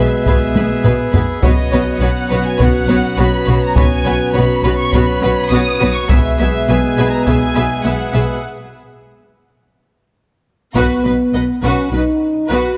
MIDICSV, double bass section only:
0, 0, Header, 1, 2, 480
1, 0, Start_track
1, 0, Tempo, 582524
1, 1177, Time_signature, 4, 2, 24, 8
1, 10527, End_track
2, 0, Start_track
2, 0, Title_t, "Double bass section"
2, 0, Program_c, 0, 48
2, 216, Note_on_c, 0, 35, 43
2, 282, Note_off_c, 0, 35, 0
2, 459, Note_on_c, 0, 35, 37
2, 525, Note_off_c, 0, 35, 0
2, 701, Note_on_c, 0, 35, 38
2, 767, Note_off_c, 0, 35, 0
2, 936, Note_on_c, 0, 35, 40
2, 1002, Note_off_c, 0, 35, 0
2, 1178, Note_on_c, 0, 35, 46
2, 1244, Note_off_c, 0, 35, 0
2, 1409, Note_on_c, 0, 35, 46
2, 1475, Note_off_c, 0, 35, 0
2, 1645, Note_on_c, 0, 35, 50
2, 1711, Note_off_c, 0, 35, 0
2, 1892, Note_on_c, 0, 35, 46
2, 1958, Note_off_c, 0, 35, 0
2, 2131, Note_on_c, 0, 35, 52
2, 2197, Note_off_c, 0, 35, 0
2, 2366, Note_on_c, 0, 35, 41
2, 2432, Note_off_c, 0, 35, 0
2, 2616, Note_on_c, 0, 35, 46
2, 2682, Note_off_c, 0, 35, 0
2, 2860, Note_on_c, 0, 35, 49
2, 2926, Note_off_c, 0, 35, 0
2, 3103, Note_on_c, 0, 35, 49
2, 3169, Note_off_c, 0, 35, 0
2, 3335, Note_on_c, 0, 35, 46
2, 3401, Note_off_c, 0, 35, 0
2, 3577, Note_on_c, 0, 35, 58
2, 3642, Note_off_c, 0, 35, 0
2, 3818, Note_on_c, 0, 35, 49
2, 3883, Note_off_c, 0, 35, 0
2, 4069, Note_on_c, 0, 35, 49
2, 4134, Note_off_c, 0, 35, 0
2, 4301, Note_on_c, 0, 35, 46
2, 4367, Note_off_c, 0, 35, 0
2, 4541, Note_on_c, 0, 35, 51
2, 4607, Note_off_c, 0, 35, 0
2, 4790, Note_on_c, 0, 35, 57
2, 4855, Note_off_c, 0, 35, 0
2, 5030, Note_on_c, 0, 35, 58
2, 5096, Note_off_c, 0, 35, 0
2, 5267, Note_on_c, 0, 35, 50
2, 5333, Note_off_c, 0, 35, 0
2, 5516, Note_on_c, 0, 35, 53
2, 5582, Note_off_c, 0, 35, 0
2, 5747, Note_on_c, 0, 35, 54
2, 5813, Note_off_c, 0, 35, 0
2, 5996, Note_on_c, 0, 35, 46
2, 6062, Note_off_c, 0, 35, 0
2, 6232, Note_on_c, 0, 35, 47
2, 6298, Note_off_c, 0, 35, 0
2, 6472, Note_on_c, 0, 35, 44
2, 6538, Note_off_c, 0, 35, 0
2, 6710, Note_on_c, 0, 35, 42
2, 6776, Note_off_c, 0, 35, 0
2, 8858, Note_on_c, 0, 35, 39
2, 8924, Note_off_c, 0, 35, 0
2, 9102, Note_on_c, 0, 35, 30
2, 9168, Note_off_c, 0, 35, 0
2, 9338, Note_on_c, 0, 35, 32
2, 9404, Note_off_c, 0, 35, 0
2, 9580, Note_on_c, 0, 35, 45
2, 9646, Note_off_c, 0, 35, 0
2, 9819, Note_on_c, 0, 35, 32
2, 9885, Note_off_c, 0, 35, 0
2, 10302, Note_on_c, 0, 35, 39
2, 10368, Note_off_c, 0, 35, 0
2, 10527, End_track
0, 0, End_of_file